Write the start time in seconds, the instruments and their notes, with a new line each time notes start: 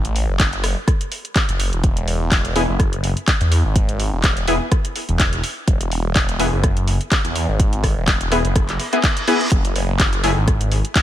Already playing: detuned saw bass A1
0.05 closed hi-hat
0.16 open hi-hat
0.29 detuned saw bass F#1
0.40 kick, clap, closed hi-hat
0.53 closed hi-hat
0.64 cross-stick, open hi-hat
0.88 kick, cross-stick, closed hi-hat
1.01 closed hi-hat
1.12 open hi-hat
1.25 closed hi-hat
1.36 kick, clap, closed hi-hat
1.49 detuned saw bass F#1, closed hi-hat
1.60 open hi-hat
1.73 detuned saw bass E1, closed hi-hat
1.84 detuned saw bass E1, kick, closed hi-hat
1.97 closed hi-hat
2.08 open hi-hat
2.32 detuned saw bass E1, kick, clap, closed hi-hat
2.45 closed hi-hat
2.56 synth stab B3 E4 G#4, open hi-hat
2.69 detuned saw bass F#1
2.80 kick, cross-stick, closed hi-hat
2.93 closed hi-hat
3.04 open hi-hat
3.17 closed hi-hat
3.28 kick, clap, closed hi-hat
3.41 detuned saw bass E2, closed hi-hat
3.52 open hi-hat
3.65 detuned saw bass G#1
3.76 kick, closed hi-hat
3.89 closed hi-hat
4.00 open hi-hat
4.13 detuned saw bass E1
4.24 kick, clap, closed hi-hat
4.37 closed hi-hat
4.48 synth stab B3 E4 G#4, open hi-hat
4.72 kick, cross-stick, closed hi-hat
4.85 closed hi-hat
4.96 open hi-hat
5.09 detuned saw bass E1, closed hi-hat
5.20 kick, clap, closed hi-hat
5.33 closed hi-hat
5.44 open hi-hat
5.68 detuned saw bass E1, kick, closed hi-hat
5.81 closed hi-hat
5.92 open hi-hat
6.16 detuned saw bass E1, kick, clap, closed hi-hat
6.29 closed hi-hat
6.40 synth stab B3 E4 G#4, open hi-hat
6.53 detuned saw bass F#1
6.64 kick, cross-stick, closed hi-hat
6.77 closed hi-hat
6.88 open hi-hat
7.01 closed hi-hat
7.12 kick, clap, closed hi-hat
7.25 detuned saw bass E2, closed hi-hat
7.36 open hi-hat
7.49 detuned saw bass G#1
7.60 kick, closed hi-hat
7.73 closed hi-hat
7.84 kick, cross-stick, open hi-hat
7.97 detuned saw bass E1
8.08 kick, clap, closed hi-hat
8.21 closed hi-hat
8.32 synth stab B3 E4 G#4, cross-stick, open hi-hat
8.45 detuned saw bass F#1, closed hi-hat
8.56 kick, cross-stick, closed hi-hat, reverse cymbal
8.69 clap, closed hi-hat
8.80 open hi-hat
8.93 synth stab B3 E4 G#4, closed hi-hat
9.04 kick, clap, closed hi-hat
9.17 closed hi-hat
9.28 synth stab B3 E4 G#4, open hi-hat
9.41 closed hi-hat
9.52 detuned saw bass F#1, kick, closed hi-hat
9.65 closed hi-hat
9.76 open hi-hat
10.00 detuned saw bass F#1, kick, clap, closed hi-hat
10.13 closed hi-hat
10.24 synth stab A3 E4 G#4, open hi-hat
10.37 detuned saw bass G#1
10.48 kick, cross-stick, closed hi-hat
10.61 closed hi-hat
10.72 open hi-hat
10.85 closed hi-hat
10.96 kick, clap, closed hi-hat